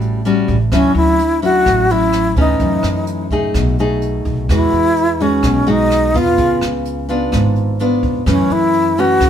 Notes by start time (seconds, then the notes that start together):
Already playing: A1 A2 G3 C#4 F#4
0.01 closed hi-hat
0.25 G3 C#4 F#4, closed hi-hat
0.48 A1, kick, closed hi-hat
0.72 D2 D3 F#3 C#4 E4, kick, cross-stick, closed hi-hat
0.95 D2 E4, closed hi-hat
1.19 closed hi-hat
1.42 F#3 C#4 E4 F#4, closed hi-hat
1.66 A1 A2, kick, cross-stick, closed hi-hat
1.89 F#3 C#4 E4, closed hi-hat
2.12 cross-stick, closed hi-hat
2.36 D2 E3 A3 C#4, kick, closed hi-hat
2.41 D#4
2.60 F#2, kick, closed hi-hat
2.83 F#2, cross-stick, closed hi-hat
3.07 closed hi-hat
3.30 A3 D#4 G#4, kick, closed hi-hat
3.54 B1 B2, kick, cross-stick, closed hi-hat
3.78 A3 D#4 G#4, closed hi-hat
4.02 closed hi-hat
4.25 B1, kick, closed hi-hat
4.49 E2 E3 G#3 E4 F#4, kick, cross-stick, closed hi-hat
4.72 E2, closed hi-hat
4.96 closed hi-hat
5.20 G#3 C#4 D#4 F#4, closed hi-hat
5.43 B1 B2, kick, cross-stick, closed hi-hat
5.67 G#3 D#4 F#4, closed hi-hat
5.91 cross-stick, closed hi-hat
6.14 E2 B3 F4, kick, closed hi-hat
6.18 F4
6.38 C#2 C#3, kick, closed hi-hat
6.61 C#2, cross-stick, closed hi-hat
6.85 closed hi-hat
7.09 B3 D4 F4, closed hi-hat
7.32 G#1 G#2, kick, cross-stick, closed hi-hat
7.56 closed hi-hat
7.79 B3 D4 F4, closed hi-hat
8.03 F2, kick, closed hi-hat
8.26 F#2 E3 A3 C#4, kick, cross-stick, closed hi-hat
8.50 F#2 E4, closed hi-hat
8.73 closed hi-hat
8.97 E3 A3 C#4 F#4, closed hi-hat
9.20 C#2 C#3, kick, cross-stick, closed hi-hat